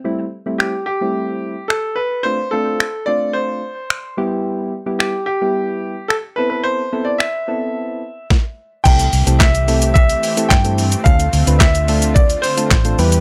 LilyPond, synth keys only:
\new Staff \with { instrumentName = "Synth keys" } { \time 4/4 \key c \major \tempo 4 = 109 <g a c' e'>16 r8 <g a c' e'>8 r8 <g a c' e'>4 r4 r16 | <a c' d' f'>16 r16 <a c' d' f'>8 r8 <a c' d' f'>4 r4 <g b e' g'>8~ | <g b e' g'>8 r16 <g b e' g'>8 r8 <g b e' g'>4 r8. <b c' e' a'>8~ | <b c' e' a'>16 r16 <b c' e' a'>8 r8 <b c' e' a'>4 r4. |
<a c' e' g' a'>16 r8 <a c' e' g' a'>16 r8 <a c' e' g' a'>8 r8. <a c' e' g' a'>16 r16 <a c' e' g' a'>16 r8 | <a c' d' f' a'>16 r8 <a c' d' f' b'>16 r8 <a c' d' f' a'>8 r8. <a c' d' f' a'>16 r16 <a c' d' f' a'>16 <g b e' g' b'>8 | }